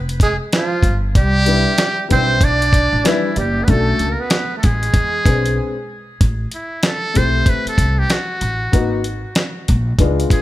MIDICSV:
0, 0, Header, 1, 7, 480
1, 0, Start_track
1, 0, Tempo, 631579
1, 878, Time_signature, 4, 2, 24, 8
1, 7918, End_track
2, 0, Start_track
2, 0, Title_t, "Muted trumpet"
2, 0, Program_c, 0, 59
2, 172, Note_on_c, 0, 68, 82
2, 277, Note_off_c, 0, 68, 0
2, 421, Note_on_c, 0, 65, 86
2, 770, Note_off_c, 0, 65, 0
2, 890, Note_on_c, 0, 67, 116
2, 1574, Note_off_c, 0, 67, 0
2, 1613, Note_on_c, 0, 72, 100
2, 1859, Note_on_c, 0, 74, 120
2, 1870, Note_off_c, 0, 72, 0
2, 2335, Note_on_c, 0, 64, 90
2, 2346, Note_off_c, 0, 74, 0
2, 2567, Note_off_c, 0, 64, 0
2, 2579, Note_on_c, 0, 67, 91
2, 2769, Note_on_c, 0, 71, 75
2, 2780, Note_off_c, 0, 67, 0
2, 2812, Note_on_c, 0, 69, 112
2, 2823, Note_off_c, 0, 71, 0
2, 3134, Note_on_c, 0, 70, 65
2, 3145, Note_off_c, 0, 69, 0
2, 3198, Note_on_c, 0, 71, 93
2, 3209, Note_off_c, 0, 70, 0
2, 3480, Note_off_c, 0, 71, 0
2, 3484, Note_on_c, 0, 69, 66
2, 3534, Note_on_c, 0, 68, 104
2, 3546, Note_off_c, 0, 69, 0
2, 4486, Note_off_c, 0, 68, 0
2, 4974, Note_on_c, 0, 64, 80
2, 5216, Note_on_c, 0, 69, 102
2, 5228, Note_off_c, 0, 64, 0
2, 5451, Note_on_c, 0, 72, 102
2, 5462, Note_off_c, 0, 69, 0
2, 5698, Note_on_c, 0, 71, 101
2, 5709, Note_off_c, 0, 72, 0
2, 5835, Note_off_c, 0, 71, 0
2, 5844, Note_on_c, 0, 69, 89
2, 6072, Note_on_c, 0, 67, 91
2, 6083, Note_off_c, 0, 69, 0
2, 6173, Note_on_c, 0, 66, 86
2, 6185, Note_off_c, 0, 67, 0
2, 6886, Note_off_c, 0, 66, 0
2, 7847, Note_on_c, 0, 68, 83
2, 7918, Note_off_c, 0, 68, 0
2, 7918, End_track
3, 0, Start_track
3, 0, Title_t, "Grand piano"
3, 0, Program_c, 1, 0
3, 1106, Note_on_c, 1, 55, 64
3, 1115, Note_on_c, 1, 59, 64
3, 1123, Note_on_c, 1, 62, 62
3, 1128, Note_on_c, 1, 64, 77
3, 1296, Note_off_c, 1, 55, 0
3, 1300, Note_off_c, 1, 59, 0
3, 1304, Note_off_c, 1, 62, 0
3, 1307, Note_off_c, 1, 64, 0
3, 1585, Note_on_c, 1, 55, 62
3, 1592, Note_on_c, 1, 59, 61
3, 1599, Note_on_c, 1, 62, 54
3, 1607, Note_on_c, 1, 64, 64
3, 1776, Note_off_c, 1, 55, 0
3, 1779, Note_off_c, 1, 59, 0
3, 1782, Note_off_c, 1, 62, 0
3, 1787, Note_off_c, 1, 64, 0
3, 2312, Note_on_c, 1, 55, 74
3, 2318, Note_on_c, 1, 59, 74
3, 2327, Note_on_c, 1, 62, 70
3, 2334, Note_on_c, 1, 64, 74
3, 2499, Note_off_c, 1, 55, 0
3, 2502, Note_off_c, 1, 59, 0
3, 2506, Note_off_c, 1, 62, 0
3, 2510, Note_off_c, 1, 64, 0
3, 2792, Note_on_c, 1, 57, 69
3, 2798, Note_on_c, 1, 61, 58
3, 2804, Note_on_c, 1, 62, 59
3, 2813, Note_on_c, 1, 66, 61
3, 3093, Note_off_c, 1, 57, 0
3, 3097, Note_off_c, 1, 61, 0
3, 3100, Note_off_c, 1, 62, 0
3, 3104, Note_off_c, 1, 66, 0
3, 3986, Note_on_c, 1, 59, 55
3, 3994, Note_on_c, 1, 60, 57
3, 4000, Note_on_c, 1, 62, 52
3, 4007, Note_on_c, 1, 68, 71
3, 4349, Note_off_c, 1, 59, 0
3, 4353, Note_off_c, 1, 60, 0
3, 4356, Note_off_c, 1, 62, 0
3, 4360, Note_off_c, 1, 68, 0
3, 5425, Note_on_c, 1, 57, 64
3, 5432, Note_on_c, 1, 60, 56
3, 5440, Note_on_c, 1, 64, 56
3, 5447, Note_on_c, 1, 67, 62
3, 6114, Note_off_c, 1, 57, 0
3, 6118, Note_off_c, 1, 60, 0
3, 6122, Note_off_c, 1, 64, 0
3, 6125, Note_off_c, 1, 67, 0
3, 6626, Note_on_c, 1, 58, 63
3, 6631, Note_on_c, 1, 59, 58
3, 6638, Note_on_c, 1, 63, 63
3, 6643, Note_on_c, 1, 66, 76
3, 6816, Note_off_c, 1, 58, 0
3, 6818, Note_off_c, 1, 59, 0
3, 6822, Note_off_c, 1, 63, 0
3, 6825, Note_off_c, 1, 66, 0
3, 7588, Note_on_c, 1, 56, 79
3, 7595, Note_on_c, 1, 59, 74
3, 7600, Note_on_c, 1, 62, 70
3, 7608, Note_on_c, 1, 65, 84
3, 7891, Note_off_c, 1, 56, 0
3, 7895, Note_off_c, 1, 59, 0
3, 7898, Note_off_c, 1, 62, 0
3, 7902, Note_off_c, 1, 65, 0
3, 7918, End_track
4, 0, Start_track
4, 0, Title_t, "Tenor saxophone"
4, 0, Program_c, 2, 66
4, 170, Note_on_c, 2, 56, 79
4, 276, Note_off_c, 2, 56, 0
4, 401, Note_on_c, 2, 53, 90
4, 759, Note_off_c, 2, 53, 0
4, 880, Note_on_c, 2, 55, 84
4, 1569, Note_off_c, 2, 55, 0
4, 1609, Note_on_c, 2, 60, 98
4, 1846, Note_on_c, 2, 62, 85
4, 1857, Note_off_c, 2, 60, 0
4, 2321, Note_on_c, 2, 52, 91
4, 2332, Note_off_c, 2, 62, 0
4, 2555, Note_off_c, 2, 52, 0
4, 2559, Note_on_c, 2, 55, 76
4, 2755, Note_on_c, 2, 59, 59
4, 2767, Note_off_c, 2, 55, 0
4, 2804, Note_on_c, 2, 57, 83
4, 2815, Note_off_c, 2, 59, 0
4, 3113, Note_on_c, 2, 58, 63
4, 3125, Note_off_c, 2, 57, 0
4, 3189, Note_on_c, 2, 59, 87
4, 3200, Note_off_c, 2, 58, 0
4, 3465, Note_off_c, 2, 59, 0
4, 3470, Note_on_c, 2, 57, 47
4, 3524, Note_on_c, 2, 56, 85
4, 3535, Note_off_c, 2, 57, 0
4, 4481, Note_off_c, 2, 56, 0
4, 7918, End_track
5, 0, Start_track
5, 0, Title_t, "Upright bass"
5, 0, Program_c, 3, 32
5, 0, Note_on_c, 3, 29, 81
5, 276, Note_off_c, 3, 29, 0
5, 628, Note_on_c, 3, 31, 88
5, 875, Note_on_c, 3, 36, 94
5, 886, Note_off_c, 3, 31, 0
5, 1241, Note_off_c, 3, 36, 0
5, 1603, Note_on_c, 3, 35, 91
5, 2197, Note_off_c, 3, 35, 0
5, 2223, Note_on_c, 3, 33, 92
5, 2295, Note_off_c, 3, 33, 0
5, 2557, Note_on_c, 3, 30, 98
5, 2740, Note_off_c, 3, 30, 0
5, 2797, Note_on_c, 3, 35, 108
5, 2980, Note_off_c, 3, 35, 0
5, 3038, Note_on_c, 3, 37, 86
5, 3150, Note_off_c, 3, 37, 0
5, 3524, Note_on_c, 3, 33, 98
5, 3705, Note_off_c, 3, 33, 0
5, 3751, Note_on_c, 3, 40, 98
5, 3936, Note_off_c, 3, 40, 0
5, 3993, Note_on_c, 3, 35, 99
5, 4236, Note_off_c, 3, 35, 0
5, 4717, Note_on_c, 3, 33, 89
5, 4900, Note_off_c, 3, 33, 0
5, 5445, Note_on_c, 3, 35, 88
5, 5625, Note_off_c, 3, 35, 0
5, 5912, Note_on_c, 3, 36, 91
5, 6097, Note_off_c, 3, 36, 0
5, 6395, Note_on_c, 3, 33, 89
5, 6578, Note_off_c, 3, 33, 0
5, 6639, Note_on_c, 3, 32, 86
5, 7004, Note_off_c, 3, 32, 0
5, 7364, Note_on_c, 3, 34, 97
5, 7544, Note_off_c, 3, 34, 0
5, 7589, Note_on_c, 3, 37, 94
5, 7775, Note_off_c, 3, 37, 0
5, 7918, End_track
6, 0, Start_track
6, 0, Title_t, "Muted upright bass strokes"
6, 5821, Note_on_c, 9, 29, 41
6, 5897, Note_off_c, 9, 29, 0
6, 7918, End_track
7, 0, Start_track
7, 0, Title_t, "Drums"
7, 69, Note_on_c, 9, 42, 63
7, 145, Note_off_c, 9, 42, 0
7, 152, Note_on_c, 9, 36, 95
7, 158, Note_on_c, 9, 42, 73
7, 228, Note_off_c, 9, 36, 0
7, 234, Note_off_c, 9, 42, 0
7, 399, Note_on_c, 9, 42, 81
7, 403, Note_on_c, 9, 38, 104
7, 475, Note_off_c, 9, 42, 0
7, 479, Note_off_c, 9, 38, 0
7, 627, Note_on_c, 9, 36, 82
7, 635, Note_on_c, 9, 42, 61
7, 703, Note_off_c, 9, 36, 0
7, 711, Note_off_c, 9, 42, 0
7, 876, Note_on_c, 9, 36, 116
7, 876, Note_on_c, 9, 42, 80
7, 952, Note_off_c, 9, 36, 0
7, 952, Note_off_c, 9, 42, 0
7, 1111, Note_on_c, 9, 42, 73
7, 1187, Note_off_c, 9, 42, 0
7, 1352, Note_on_c, 9, 42, 84
7, 1356, Note_on_c, 9, 38, 124
7, 1428, Note_off_c, 9, 42, 0
7, 1432, Note_off_c, 9, 38, 0
7, 1600, Note_on_c, 9, 42, 90
7, 1603, Note_on_c, 9, 36, 85
7, 1676, Note_off_c, 9, 42, 0
7, 1679, Note_off_c, 9, 36, 0
7, 1830, Note_on_c, 9, 36, 110
7, 1833, Note_on_c, 9, 42, 84
7, 1906, Note_off_c, 9, 36, 0
7, 1909, Note_off_c, 9, 42, 0
7, 1992, Note_on_c, 9, 42, 66
7, 2068, Note_off_c, 9, 42, 0
7, 2073, Note_on_c, 9, 36, 98
7, 2081, Note_on_c, 9, 42, 85
7, 2149, Note_off_c, 9, 36, 0
7, 2157, Note_off_c, 9, 42, 0
7, 2319, Note_on_c, 9, 42, 85
7, 2323, Note_on_c, 9, 38, 104
7, 2395, Note_off_c, 9, 42, 0
7, 2399, Note_off_c, 9, 38, 0
7, 2555, Note_on_c, 9, 42, 62
7, 2631, Note_off_c, 9, 42, 0
7, 2795, Note_on_c, 9, 42, 86
7, 2797, Note_on_c, 9, 36, 107
7, 2871, Note_off_c, 9, 42, 0
7, 2873, Note_off_c, 9, 36, 0
7, 3035, Note_on_c, 9, 42, 63
7, 3111, Note_off_c, 9, 42, 0
7, 3269, Note_on_c, 9, 42, 80
7, 3274, Note_on_c, 9, 38, 124
7, 3345, Note_off_c, 9, 42, 0
7, 3350, Note_off_c, 9, 38, 0
7, 3520, Note_on_c, 9, 42, 84
7, 3525, Note_on_c, 9, 36, 93
7, 3596, Note_off_c, 9, 42, 0
7, 3601, Note_off_c, 9, 36, 0
7, 3669, Note_on_c, 9, 42, 52
7, 3745, Note_off_c, 9, 42, 0
7, 3752, Note_on_c, 9, 36, 102
7, 3752, Note_on_c, 9, 42, 81
7, 3828, Note_off_c, 9, 36, 0
7, 3828, Note_off_c, 9, 42, 0
7, 3994, Note_on_c, 9, 36, 99
7, 4000, Note_on_c, 9, 42, 76
7, 4070, Note_off_c, 9, 36, 0
7, 4076, Note_off_c, 9, 42, 0
7, 4146, Note_on_c, 9, 42, 65
7, 4222, Note_off_c, 9, 42, 0
7, 4718, Note_on_c, 9, 36, 107
7, 4718, Note_on_c, 9, 42, 87
7, 4794, Note_off_c, 9, 36, 0
7, 4794, Note_off_c, 9, 42, 0
7, 4951, Note_on_c, 9, 42, 67
7, 5027, Note_off_c, 9, 42, 0
7, 5188, Note_on_c, 9, 42, 82
7, 5193, Note_on_c, 9, 38, 120
7, 5264, Note_off_c, 9, 42, 0
7, 5269, Note_off_c, 9, 38, 0
7, 5437, Note_on_c, 9, 42, 86
7, 5444, Note_on_c, 9, 36, 86
7, 5513, Note_off_c, 9, 42, 0
7, 5520, Note_off_c, 9, 36, 0
7, 5670, Note_on_c, 9, 36, 99
7, 5673, Note_on_c, 9, 42, 75
7, 5746, Note_off_c, 9, 36, 0
7, 5749, Note_off_c, 9, 42, 0
7, 5829, Note_on_c, 9, 42, 61
7, 5905, Note_off_c, 9, 42, 0
7, 5912, Note_on_c, 9, 36, 91
7, 5917, Note_on_c, 9, 42, 81
7, 5988, Note_off_c, 9, 36, 0
7, 5993, Note_off_c, 9, 42, 0
7, 6153, Note_on_c, 9, 42, 77
7, 6158, Note_on_c, 9, 38, 97
7, 6229, Note_off_c, 9, 42, 0
7, 6234, Note_off_c, 9, 38, 0
7, 6393, Note_on_c, 9, 42, 69
7, 6469, Note_off_c, 9, 42, 0
7, 6637, Note_on_c, 9, 36, 103
7, 6638, Note_on_c, 9, 42, 74
7, 6713, Note_off_c, 9, 36, 0
7, 6714, Note_off_c, 9, 42, 0
7, 6873, Note_on_c, 9, 42, 65
7, 6949, Note_off_c, 9, 42, 0
7, 7109, Note_on_c, 9, 42, 92
7, 7113, Note_on_c, 9, 38, 116
7, 7185, Note_off_c, 9, 42, 0
7, 7189, Note_off_c, 9, 38, 0
7, 7359, Note_on_c, 9, 42, 86
7, 7363, Note_on_c, 9, 36, 80
7, 7435, Note_off_c, 9, 42, 0
7, 7439, Note_off_c, 9, 36, 0
7, 7589, Note_on_c, 9, 36, 96
7, 7590, Note_on_c, 9, 42, 77
7, 7665, Note_off_c, 9, 36, 0
7, 7666, Note_off_c, 9, 42, 0
7, 7750, Note_on_c, 9, 42, 60
7, 7826, Note_off_c, 9, 42, 0
7, 7831, Note_on_c, 9, 36, 101
7, 7837, Note_on_c, 9, 42, 82
7, 7907, Note_off_c, 9, 36, 0
7, 7913, Note_off_c, 9, 42, 0
7, 7918, End_track
0, 0, End_of_file